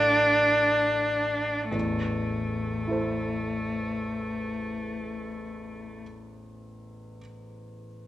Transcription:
Already playing: grand piano A1 A2 A4 F5 A5, cello D4
1.71 grand piano A1 E2, cello A3
2.87 grand piano E4 A4 C5

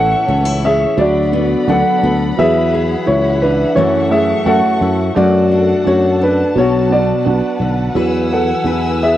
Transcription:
Already playing: fretless electric bass A1, steel-string acoustic guitar A2 E3 C#4 E4, felt piano E3, string section A3 C#5 E5 C#6, upright piano A4 F#5
0.27 fretless electric bass C#2, steel-string acoustic guitar E3 C#4, felt piano C#4
0.45 steel-string acoustic guitar E4
0.64 steel-string acoustic guitar C#4, upright piano G#4 E5
0.97 fretless electric bass D2, steel-string acoustic guitar D3 D4, felt piano F#3, string section A4 D5 F#5 B5, upright piano D5
1.01 upright piano F#4
1.33 felt piano B3, steel-string acoustic guitar B3
1.67 fretless electric bass D2, steel-string acoustic guitar F#3 D4, felt piano B3 D4 A4, upright piano F#5
1.71 upright piano A4
2.03 fretless electric bass D2, steel-string acoustic guitar B3
2.37 fretless electric bass E2, steel-string acoustic guitar E3 B4, felt piano F#3, string section G#4 E5, upright piano G#4 E5
2.74 steel-string acoustic guitar G#4
3.06 fretless electric bass C#2, felt piano E4, upright piano E4 C#5
3.41 steel-string acoustic guitar E3, upright piano D4 B4
3.75 steel-string acoustic guitar F#2 A3 E4 F#4, fretless electric bass F#2, felt piano E3, string section A3 C#6, upright piano E4 C#5
4.09 felt piano A3, steel-string acoustic guitar E4, upright piano G#4 E5
4.44 fretless electric bass F#2, felt piano A3 C#4 F#4, steel-string acoustic guitar A3 F#4, upright piano A4 F#5
4.81 fretless electric bass F#2, steel-string acoustic guitar E4
5.15 steel-string acoustic guitar F#2 F#4, fretless electric bass F#2, felt piano A3, string section D4 A4 F#5 A5, upright piano F#4 D5
5.51 steel-string acoustic guitar D4
5.84 fretless electric bass F#2, steel-string acoustic guitar A3 F#4, felt piano D4, upright piano F#4 C#5
6.21 steel-string acoustic guitar D4, upright piano D4 B4
6.55 fretless electric bass B1, steel-string acoustic guitar B2 F#4, felt piano F#3, string section B4 F#5, upright piano C#5
6.60 upright piano F#4
6.90 felt piano B3, upright piano F#4 D5
7.25 fretless electric bass B1, felt piano B3 D4 F#4
7.60 fretless electric bass B1, steel-string acoustic guitar D3
7.95 fretless electric bass E2, steel-string acoustic guitar E3 B4, felt piano F#3, string section G#5 E6
8.33 upright piano A4 F#5
8.64 fretless electric bass E2, felt piano E4, steel-string acoustic guitar E4 B4
9.02 steel-string acoustic guitar G#4, upright piano G#4 E5

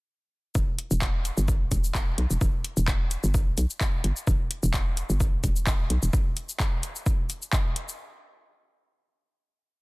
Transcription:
0.55 fm bass E1, kick, shaker
0.79 closed hi-hat
0.91 fm bass E1, shaker
1.02 kick, clap, shaker
1.25 closed hi-hat, shaker
1.37 fm bass G1, shaker
1.48 kick, shaker
1.72 fm bass E1, kick, closed hi-hat, shaker
1.84 shaker
1.95 kick, clap, shaker
2.18 fm bass B1, closed hi-hat
2.30 fm bass E1, shaker
2.41 fm bass E1, kick, shaker
2.64 closed hi-hat
2.77 fm bass E1, shaker
2.88 kick, clap, shaker
3.11 closed hi-hat, shaker
3.24 fm bass G1, shaker
3.34 kick, shaker
3.58 fm bass B1, closed hi-hat, shaker
3.70 shaker
3.81 kick, clap, shaker
4.04 fm bass G1, closed hi-hat
4.17 shaker
4.27 fm bass E1, kick, shaker
4.51 closed hi-hat
4.63 fm bass E1, shaker
4.74 kick, clap, shaker
4.97 closed hi-hat, shaker
5.10 fm bass G1, shaker
5.20 kick, shaker
5.44 fm bass E1, kick, closed hi-hat, shaker
5.56 shaker
5.67 kick, clap, shaker
5.90 fm bass B1, closed hi-hat
6.03 fm bass E1, shaker
6.13 kick, shaker
6.37 closed hi-hat, shaker
6.49 shaker
6.60 kick, clap, shaker
6.83 closed hi-hat, shaker
6.96 shaker
7.06 kick, shaker
7.30 closed hi-hat, shaker
7.42 shaker
7.53 kick, clap, shaker
7.76 closed hi-hat
7.89 shaker

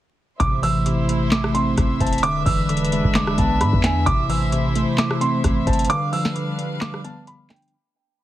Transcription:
0.40 808-style bass A1, tine electric piano C3, string section A3 E4 C5 E5, grand piano D6, kick, closed hi-hat
0.63 tine electric piano E3, grand piano E6, open hi-hat
0.86 tine electric piano C3, closed hi-hat
1.09 tine electric piano A3, closed hi-hat
1.31 grand piano D6, snare, clap, closed hi-hat
1.44 cross-stick
1.54 tine electric piano C4, grand piano C6, closed hi-hat
1.77 808-style bass A1, kick, cross-stick, closed hi-hat
2.00 808-style bass E1, tine electric piano C5, grand piano A5, kick, closed hi-hat
2.07 closed hi-hat
2.13 closed hi-hat
2.18 closed hi-hat
2.23 tine electric piano D3, string section G#3 D4 B4, grand piano D6, closed hi-hat
2.46 808-style bass E1, tine electric piano E3, grand piano E6, kick, open hi-hat
2.69 tine electric piano D3, closed hi-hat
2.77 closed hi-hat
2.85 closed hi-hat
2.92 tine electric piano G#3, closed hi-hat
3.04 808-style bass E1, kick
3.14 grand piano D6, snare, clap, closed hi-hat
3.27 cross-stick
3.38 808-style bass B1, tine electric piano B3, grand piano A5, kick, closed hi-hat
3.61 808-style bass G#2, grand piano B5, cross-stick, closed hi-hat
3.73 808-style bass E2, kick
3.83 tine electric piano D4, grand piano G#5, snare, clap, closed hi-hat
4.06 808-style bass A1, tine electric piano C3, string section A3 E4 C5, grand piano D6, kick, closed hi-hat
4.29 tine electric piano E3, grand piano E6, open hi-hat
4.52 tine electric piano C3, closed hi-hat
4.75 tine electric piano A3, closed hi-hat
4.98 grand piano D6, snare, clap, closed hi-hat
5.11 cross-stick
5.21 tine electric piano C4, grand piano C6, closed hi-hat
5.44 808-style bass A1, kick, cross-stick, closed hi-hat
5.67 808-style bass G1, tine electric piano C5, grand piano A5, kick, closed hi-hat
5.73 closed hi-hat
5.79 closed hi-hat
5.85 closed hi-hat
5.89 tine electric piano D3, string section G3 D4 B4 F5, grand piano D6, closed hi-hat
6.13 tine electric piano F3, grand piano E6, open hi-hat
6.25 snare
6.36 tine electric piano D3, closed hi-hat
6.58 tine electric piano G3, closed hi-hat
6.81 grand piano D6, snare, clap, closed hi-hat
6.94 cross-stick
7.04 tine electric piano B3, grand piano A5, closed hi-hat
7.27 grand piano B5, closed hi-hat
7.49 tine electric piano D4, grand piano G5, snare, clap, closed hi-hat
7.56 closed hi-hat
7.62 closed hi-hat
7.68 closed hi-hat

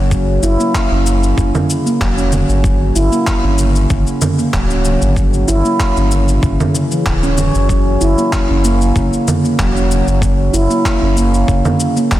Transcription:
Already playing: sub bass F#1
0.11 handpan F#3, kick, cabasa
0.42 sub bass F#1, handpan E4, cabasa
0.60 handpan A#3, cabasa
0.74 kick, clap, cabasa
0.91 sub bass F#1, handpan C#4
1.06 handpan C#3, cabasa
1.23 cabasa
1.38 sub bass F#1, handpan C#3, kick, cabasa
1.55 low conga, cabasa
1.70 cabasa
1.86 handpan A#3, cabasa
2.01 sub bass E1, handpan F#3, kick, clap, cabasa
2.17 handpan C#4, cabasa
2.32 handpan C#3, low conga, cabasa
2.49 sub bass G1, cabasa
2.64 handpan F#3, kick, cabasa
2.95 sub bass G1, handpan E4, cabasa
3.12 handpan A#3, cabasa
3.27 kick, clap, cabasa
3.44 sub bass G1, handpan C#4
3.58 handpan C#3, cabasa
3.76 cabasa
3.90 sub bass G1, handpan C#3, kick, cabasa
4.07 cabasa
4.22 low conga, cabasa
4.38 handpan A#3, cabasa
4.53 sub bass D1, handpan F#3, kick, clap, cabasa
4.70 handpan C#4, cabasa
4.85 handpan C#3, cabasa
5.02 sub bass G1, cabasa
5.16 handpan F#3, kick, cabasa
5.34 cabasa
5.48 sub bass G1, handpan E4, cabasa
5.65 handpan A#3, cabasa
5.80 kick, clap, cabasa
5.97 sub bass G1, handpan C#4, cabasa
6.11 handpan C#3, cabasa
6.29 cabasa
6.43 sub bass G1, handpan C#3, kick, cabasa
6.60 low conga, cabasa
6.74 handpan C#3, cabasa
6.91 handpan E3, cabasa
7.06 sub bass D1, handpan C#3, kick, clap, cabasa
7.23 handpan C#4, cabasa
7.38 handpan F#3, low conga, cabasa
7.55 sub bass F#1, cabasa
7.69 handpan F#3, kick, cabasa
8.01 sub bass F#1, handpan E4, cabasa
8.18 handpan A#3, cabasa
8.32 kick, clap, cabasa
8.50 sub bass F#1, handpan C#4
8.64 handpan A#3, cabasa
8.82 cabasa
8.96 sub bass F#1, handpan C#3, kick, cabasa
9.13 cabasa
9.28 low conga, cabasa
9.44 handpan A#3, cabasa
9.59 sub bass E1, handpan F#3, kick, clap, cabasa
9.76 handpan C#4, cabasa
9.91 handpan C#3, cabasa
10.07 sub bass F#1, cabasa
10.22 handpan F#3, kick, cabasa
10.53 sub bass F#1, handpan E4, cabasa
10.70 handpan A#3, cabasa
10.85 kick, clap, cabasa
11.02 sub bass F#1, handpan C#4
11.16 handpan A#3, cabasa
11.34 cabasa
11.48 sub bass F#1, handpan C#3, kick, cabasa
11.65 low conga, cabasa
11.80 cabasa
11.97 handpan A#3, cabasa
12.11 sub bass E1, handpan F#3, kick, clap, cabasa

